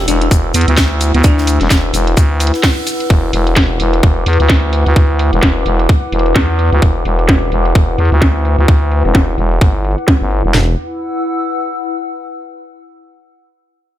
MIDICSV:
0, 0, Header, 1, 5, 480
1, 0, Start_track
1, 0, Tempo, 465116
1, 1281, Time_signature, 4, 2, 24, 8
1, 14429, End_track
2, 0, Start_track
2, 0, Title_t, "Ambient pad"
2, 0, Program_c, 0, 92
2, 0, Note_on_c, 0, 64, 77
2, 0, Note_on_c, 0, 71, 83
2, 0, Note_on_c, 0, 78, 67
2, 0, Note_on_c, 0, 88, 89
2, 3506, Note_on_c, 0, 86, 86
2, 3535, Note_off_c, 0, 88, 0
2, 10868, Note_off_c, 0, 64, 0
2, 10879, Note_off_c, 0, 78, 0
2, 10880, Note_on_c, 0, 64, 76
2, 10882, Note_off_c, 0, 71, 0
2, 10908, Note_off_c, 0, 86, 0
2, 10966, Note_on_c, 0, 71, 79
2, 11040, Note_on_c, 0, 78, 69
2, 11100, Note_on_c, 0, 88, 75
2, 12759, Note_off_c, 0, 64, 0
2, 12759, Note_off_c, 0, 78, 0
2, 12759, Note_off_c, 0, 88, 0
2, 12760, Note_off_c, 0, 71, 0
2, 14429, End_track
3, 0, Start_track
3, 0, Title_t, "FM electric piano"
3, 0, Program_c, 1, 5
3, 82, Note_on_c, 1, 62, 93
3, 171, Note_off_c, 1, 62, 0
3, 221, Note_on_c, 1, 62, 75
3, 285, Note_off_c, 1, 62, 0
3, 562, Note_on_c, 1, 59, 84
3, 651, Note_off_c, 1, 59, 0
3, 701, Note_on_c, 1, 59, 72
3, 765, Note_off_c, 1, 59, 0
3, 1182, Note_on_c, 1, 59, 91
3, 1262, Note_off_c, 1, 59, 0
3, 1283, Note_on_c, 1, 62, 90
3, 1762, Note_off_c, 1, 62, 0
3, 14429, End_track
4, 0, Start_track
4, 0, Title_t, "FM bass"
4, 0, Program_c, 2, 39
4, 81, Note_on_c, 2, 28, 104
4, 305, Note_off_c, 2, 28, 0
4, 321, Note_on_c, 2, 28, 94
4, 545, Note_off_c, 2, 28, 0
4, 561, Note_on_c, 2, 40, 92
4, 679, Note_off_c, 2, 40, 0
4, 701, Note_on_c, 2, 38, 96
4, 1159, Note_off_c, 2, 38, 0
4, 1181, Note_on_c, 2, 38, 93
4, 1265, Note_off_c, 2, 38, 0
4, 1282, Note_on_c, 2, 38, 97
4, 1639, Note_off_c, 2, 38, 0
4, 1661, Note_on_c, 2, 28, 97
4, 1745, Note_off_c, 2, 28, 0
4, 1761, Note_on_c, 2, 28, 101
4, 1985, Note_off_c, 2, 28, 0
4, 2001, Note_on_c, 2, 28, 105
4, 2225, Note_off_c, 2, 28, 0
4, 2241, Note_on_c, 2, 38, 95
4, 2599, Note_off_c, 2, 38, 0
4, 3201, Note_on_c, 2, 28, 94
4, 3425, Note_off_c, 2, 28, 0
4, 3441, Note_on_c, 2, 28, 103
4, 3905, Note_off_c, 2, 28, 0
4, 3921, Note_on_c, 2, 28, 101
4, 4145, Note_off_c, 2, 28, 0
4, 4161, Note_on_c, 2, 28, 98
4, 4385, Note_off_c, 2, 28, 0
4, 4402, Note_on_c, 2, 40, 97
4, 4519, Note_off_c, 2, 40, 0
4, 4542, Note_on_c, 2, 38, 99
4, 4999, Note_off_c, 2, 38, 0
4, 5021, Note_on_c, 2, 38, 96
4, 5105, Note_off_c, 2, 38, 0
4, 5121, Note_on_c, 2, 38, 94
4, 5479, Note_off_c, 2, 38, 0
4, 5501, Note_on_c, 2, 28, 103
4, 5585, Note_off_c, 2, 28, 0
4, 5601, Note_on_c, 2, 28, 101
4, 5825, Note_off_c, 2, 28, 0
4, 5841, Note_on_c, 2, 28, 104
4, 6065, Note_off_c, 2, 28, 0
4, 6321, Note_on_c, 2, 28, 97
4, 6545, Note_off_c, 2, 28, 0
4, 6560, Note_on_c, 2, 40, 101
4, 6918, Note_off_c, 2, 40, 0
4, 6941, Note_on_c, 2, 38, 100
4, 7025, Note_off_c, 2, 38, 0
4, 7041, Note_on_c, 2, 28, 95
4, 7265, Note_off_c, 2, 28, 0
4, 7281, Note_on_c, 2, 28, 100
4, 7745, Note_off_c, 2, 28, 0
4, 7761, Note_on_c, 2, 28, 102
4, 7985, Note_off_c, 2, 28, 0
4, 8001, Note_on_c, 2, 28, 94
4, 8225, Note_off_c, 2, 28, 0
4, 8241, Note_on_c, 2, 40, 93
4, 8359, Note_off_c, 2, 40, 0
4, 8381, Note_on_c, 2, 38, 100
4, 8839, Note_off_c, 2, 38, 0
4, 8860, Note_on_c, 2, 38, 97
4, 8944, Note_off_c, 2, 38, 0
4, 8961, Note_on_c, 2, 38, 96
4, 9319, Note_off_c, 2, 38, 0
4, 9342, Note_on_c, 2, 28, 101
4, 9425, Note_off_c, 2, 28, 0
4, 9441, Note_on_c, 2, 28, 97
4, 9665, Note_off_c, 2, 28, 0
4, 9681, Note_on_c, 2, 28, 103
4, 9905, Note_off_c, 2, 28, 0
4, 9921, Note_on_c, 2, 31, 96
4, 10279, Note_off_c, 2, 31, 0
4, 10542, Note_on_c, 2, 31, 95
4, 10759, Note_off_c, 2, 31, 0
4, 10781, Note_on_c, 2, 28, 91
4, 10865, Note_off_c, 2, 28, 0
4, 10881, Note_on_c, 2, 28, 98
4, 11104, Note_off_c, 2, 28, 0
4, 14429, End_track
5, 0, Start_track
5, 0, Title_t, "Drums"
5, 81, Note_on_c, 9, 46, 100
5, 83, Note_on_c, 9, 82, 62
5, 184, Note_off_c, 9, 46, 0
5, 186, Note_off_c, 9, 82, 0
5, 222, Note_on_c, 9, 42, 51
5, 321, Note_off_c, 9, 42, 0
5, 321, Note_on_c, 9, 36, 126
5, 321, Note_on_c, 9, 42, 64
5, 328, Note_on_c, 9, 82, 95
5, 424, Note_off_c, 9, 36, 0
5, 425, Note_off_c, 9, 42, 0
5, 431, Note_off_c, 9, 82, 0
5, 557, Note_on_c, 9, 82, 64
5, 561, Note_on_c, 9, 46, 115
5, 632, Note_on_c, 9, 42, 61
5, 660, Note_off_c, 9, 82, 0
5, 665, Note_off_c, 9, 46, 0
5, 701, Note_off_c, 9, 42, 0
5, 701, Note_on_c, 9, 42, 51
5, 797, Note_on_c, 9, 38, 110
5, 799, Note_off_c, 9, 38, 0
5, 799, Note_on_c, 9, 38, 127
5, 801, Note_off_c, 9, 42, 0
5, 801, Note_on_c, 9, 36, 121
5, 801, Note_on_c, 9, 42, 64
5, 802, Note_on_c, 9, 82, 88
5, 902, Note_off_c, 9, 38, 0
5, 904, Note_off_c, 9, 36, 0
5, 904, Note_off_c, 9, 42, 0
5, 905, Note_off_c, 9, 82, 0
5, 1039, Note_on_c, 9, 82, 66
5, 1040, Note_on_c, 9, 46, 96
5, 1143, Note_off_c, 9, 46, 0
5, 1143, Note_off_c, 9, 82, 0
5, 1181, Note_on_c, 9, 42, 50
5, 1277, Note_on_c, 9, 82, 86
5, 1280, Note_off_c, 9, 42, 0
5, 1280, Note_on_c, 9, 42, 60
5, 1281, Note_on_c, 9, 36, 124
5, 1380, Note_off_c, 9, 82, 0
5, 1384, Note_off_c, 9, 36, 0
5, 1384, Note_off_c, 9, 42, 0
5, 1425, Note_on_c, 9, 38, 47
5, 1520, Note_on_c, 9, 46, 104
5, 1525, Note_on_c, 9, 82, 67
5, 1528, Note_off_c, 9, 38, 0
5, 1623, Note_off_c, 9, 46, 0
5, 1628, Note_off_c, 9, 82, 0
5, 1658, Note_on_c, 9, 38, 37
5, 1660, Note_on_c, 9, 42, 50
5, 1757, Note_off_c, 9, 38, 0
5, 1757, Note_on_c, 9, 38, 111
5, 1759, Note_off_c, 9, 42, 0
5, 1759, Note_on_c, 9, 42, 63
5, 1760, Note_on_c, 9, 82, 96
5, 1761, Note_off_c, 9, 38, 0
5, 1761, Note_on_c, 9, 36, 123
5, 1761, Note_on_c, 9, 38, 100
5, 1863, Note_off_c, 9, 42, 0
5, 1863, Note_off_c, 9, 82, 0
5, 1864, Note_off_c, 9, 36, 0
5, 1864, Note_off_c, 9, 38, 0
5, 2000, Note_on_c, 9, 46, 92
5, 2002, Note_on_c, 9, 82, 68
5, 2103, Note_off_c, 9, 46, 0
5, 2105, Note_off_c, 9, 82, 0
5, 2140, Note_on_c, 9, 42, 51
5, 2240, Note_off_c, 9, 42, 0
5, 2240, Note_on_c, 9, 42, 64
5, 2241, Note_on_c, 9, 36, 122
5, 2241, Note_on_c, 9, 82, 90
5, 2343, Note_off_c, 9, 42, 0
5, 2344, Note_off_c, 9, 36, 0
5, 2344, Note_off_c, 9, 82, 0
5, 2479, Note_on_c, 9, 46, 108
5, 2479, Note_on_c, 9, 82, 60
5, 2549, Note_on_c, 9, 42, 61
5, 2582, Note_off_c, 9, 46, 0
5, 2583, Note_off_c, 9, 82, 0
5, 2620, Note_off_c, 9, 42, 0
5, 2620, Note_on_c, 9, 42, 47
5, 2622, Note_on_c, 9, 38, 41
5, 2718, Note_off_c, 9, 38, 0
5, 2718, Note_on_c, 9, 38, 118
5, 2719, Note_off_c, 9, 38, 0
5, 2719, Note_off_c, 9, 42, 0
5, 2719, Note_on_c, 9, 38, 113
5, 2719, Note_on_c, 9, 42, 65
5, 2720, Note_on_c, 9, 36, 121
5, 2722, Note_on_c, 9, 46, 79
5, 2822, Note_off_c, 9, 38, 0
5, 2823, Note_off_c, 9, 42, 0
5, 2824, Note_off_c, 9, 36, 0
5, 2825, Note_off_c, 9, 46, 0
5, 2959, Note_on_c, 9, 46, 92
5, 2959, Note_on_c, 9, 82, 75
5, 3062, Note_off_c, 9, 46, 0
5, 3062, Note_off_c, 9, 82, 0
5, 3099, Note_on_c, 9, 42, 47
5, 3200, Note_off_c, 9, 42, 0
5, 3200, Note_on_c, 9, 36, 117
5, 3200, Note_on_c, 9, 42, 58
5, 3303, Note_off_c, 9, 42, 0
5, 3304, Note_off_c, 9, 36, 0
5, 3439, Note_on_c, 9, 46, 106
5, 3543, Note_off_c, 9, 46, 0
5, 3580, Note_on_c, 9, 42, 50
5, 3677, Note_on_c, 9, 38, 112
5, 3679, Note_off_c, 9, 42, 0
5, 3679, Note_on_c, 9, 42, 66
5, 3680, Note_on_c, 9, 36, 113
5, 3780, Note_off_c, 9, 38, 0
5, 3782, Note_off_c, 9, 42, 0
5, 3784, Note_off_c, 9, 36, 0
5, 3919, Note_on_c, 9, 46, 94
5, 4023, Note_off_c, 9, 46, 0
5, 4060, Note_on_c, 9, 42, 49
5, 4159, Note_off_c, 9, 42, 0
5, 4159, Note_on_c, 9, 42, 65
5, 4161, Note_on_c, 9, 36, 127
5, 4263, Note_off_c, 9, 42, 0
5, 4264, Note_off_c, 9, 36, 0
5, 4399, Note_on_c, 9, 46, 108
5, 4469, Note_on_c, 9, 42, 60
5, 4503, Note_off_c, 9, 46, 0
5, 4540, Note_off_c, 9, 42, 0
5, 4540, Note_on_c, 9, 42, 52
5, 4638, Note_on_c, 9, 38, 116
5, 4640, Note_off_c, 9, 42, 0
5, 4640, Note_on_c, 9, 36, 122
5, 4640, Note_on_c, 9, 42, 65
5, 4741, Note_off_c, 9, 38, 0
5, 4743, Note_off_c, 9, 36, 0
5, 4743, Note_off_c, 9, 42, 0
5, 4879, Note_on_c, 9, 46, 89
5, 4982, Note_off_c, 9, 46, 0
5, 5020, Note_on_c, 9, 42, 50
5, 5119, Note_off_c, 9, 42, 0
5, 5119, Note_on_c, 9, 42, 65
5, 5120, Note_on_c, 9, 36, 112
5, 5223, Note_off_c, 9, 36, 0
5, 5223, Note_off_c, 9, 42, 0
5, 5359, Note_on_c, 9, 46, 100
5, 5463, Note_off_c, 9, 46, 0
5, 5500, Note_on_c, 9, 42, 52
5, 5598, Note_on_c, 9, 38, 116
5, 5599, Note_off_c, 9, 42, 0
5, 5599, Note_on_c, 9, 42, 62
5, 5600, Note_on_c, 9, 36, 109
5, 5701, Note_off_c, 9, 38, 0
5, 5703, Note_off_c, 9, 36, 0
5, 5703, Note_off_c, 9, 42, 0
5, 5839, Note_on_c, 9, 46, 92
5, 5942, Note_off_c, 9, 46, 0
5, 5980, Note_on_c, 9, 42, 52
5, 6080, Note_off_c, 9, 42, 0
5, 6080, Note_on_c, 9, 36, 120
5, 6080, Note_on_c, 9, 42, 69
5, 6183, Note_off_c, 9, 36, 0
5, 6184, Note_off_c, 9, 42, 0
5, 6321, Note_on_c, 9, 46, 100
5, 6391, Note_on_c, 9, 42, 66
5, 6424, Note_off_c, 9, 46, 0
5, 6461, Note_off_c, 9, 42, 0
5, 6461, Note_on_c, 9, 42, 51
5, 6558, Note_on_c, 9, 38, 113
5, 6560, Note_off_c, 9, 42, 0
5, 6560, Note_on_c, 9, 36, 113
5, 6560, Note_on_c, 9, 42, 68
5, 6661, Note_off_c, 9, 38, 0
5, 6663, Note_off_c, 9, 36, 0
5, 6663, Note_off_c, 9, 42, 0
5, 6800, Note_on_c, 9, 46, 83
5, 6903, Note_off_c, 9, 46, 0
5, 6940, Note_on_c, 9, 42, 51
5, 7039, Note_off_c, 9, 42, 0
5, 7039, Note_on_c, 9, 42, 67
5, 7040, Note_on_c, 9, 36, 107
5, 7143, Note_off_c, 9, 36, 0
5, 7143, Note_off_c, 9, 42, 0
5, 7279, Note_on_c, 9, 46, 100
5, 7383, Note_off_c, 9, 46, 0
5, 7419, Note_on_c, 9, 42, 53
5, 7518, Note_on_c, 9, 38, 116
5, 7520, Note_off_c, 9, 42, 0
5, 7520, Note_on_c, 9, 36, 108
5, 7520, Note_on_c, 9, 42, 64
5, 7621, Note_off_c, 9, 38, 0
5, 7623, Note_off_c, 9, 42, 0
5, 7624, Note_off_c, 9, 36, 0
5, 7759, Note_on_c, 9, 46, 90
5, 7862, Note_off_c, 9, 46, 0
5, 7899, Note_on_c, 9, 42, 54
5, 7999, Note_off_c, 9, 42, 0
5, 7999, Note_on_c, 9, 42, 68
5, 8000, Note_on_c, 9, 36, 120
5, 8102, Note_off_c, 9, 42, 0
5, 8104, Note_off_c, 9, 36, 0
5, 8240, Note_on_c, 9, 46, 101
5, 8310, Note_on_c, 9, 42, 70
5, 8343, Note_off_c, 9, 46, 0
5, 8381, Note_off_c, 9, 42, 0
5, 8381, Note_on_c, 9, 42, 57
5, 8478, Note_on_c, 9, 38, 126
5, 8480, Note_off_c, 9, 42, 0
5, 8480, Note_on_c, 9, 36, 114
5, 8480, Note_on_c, 9, 42, 67
5, 8581, Note_off_c, 9, 38, 0
5, 8583, Note_off_c, 9, 42, 0
5, 8584, Note_off_c, 9, 36, 0
5, 8721, Note_on_c, 9, 46, 86
5, 8824, Note_off_c, 9, 46, 0
5, 8860, Note_on_c, 9, 42, 53
5, 8961, Note_on_c, 9, 36, 114
5, 8964, Note_off_c, 9, 42, 0
5, 9064, Note_off_c, 9, 36, 0
5, 9200, Note_on_c, 9, 46, 101
5, 9304, Note_off_c, 9, 46, 0
5, 9339, Note_on_c, 9, 38, 37
5, 9341, Note_on_c, 9, 42, 54
5, 9439, Note_off_c, 9, 38, 0
5, 9439, Note_on_c, 9, 38, 118
5, 9441, Note_on_c, 9, 36, 114
5, 9444, Note_off_c, 9, 42, 0
5, 9542, Note_off_c, 9, 38, 0
5, 9544, Note_off_c, 9, 36, 0
5, 9681, Note_on_c, 9, 46, 93
5, 9784, Note_off_c, 9, 46, 0
5, 9821, Note_on_c, 9, 42, 56
5, 9921, Note_on_c, 9, 36, 115
5, 9924, Note_off_c, 9, 42, 0
5, 10024, Note_off_c, 9, 36, 0
5, 10160, Note_on_c, 9, 46, 103
5, 10231, Note_on_c, 9, 42, 68
5, 10264, Note_off_c, 9, 46, 0
5, 10301, Note_off_c, 9, 42, 0
5, 10301, Note_on_c, 9, 42, 54
5, 10398, Note_on_c, 9, 38, 123
5, 10401, Note_on_c, 9, 36, 114
5, 10404, Note_off_c, 9, 42, 0
5, 10501, Note_off_c, 9, 38, 0
5, 10504, Note_off_c, 9, 36, 0
5, 10640, Note_on_c, 9, 46, 84
5, 10743, Note_off_c, 9, 46, 0
5, 10780, Note_on_c, 9, 42, 51
5, 10880, Note_on_c, 9, 38, 99
5, 10880, Note_on_c, 9, 43, 101
5, 10883, Note_off_c, 9, 42, 0
5, 10984, Note_off_c, 9, 38, 0
5, 10984, Note_off_c, 9, 43, 0
5, 14429, End_track
0, 0, End_of_file